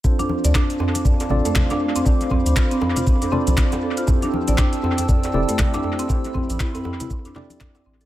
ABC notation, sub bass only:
X:1
M:4/4
L:1/16
Q:"Swing 16ths" 1/4=119
K:Ddor
V:1 name="Sub bass" clef=bass
z3 D,, z6 A,,, z4 z | z3 D,, z6 z C,, z4 | z3 A,,, z6 E,,, z4 z | z3 A,,, z8 z2 A,,, z |]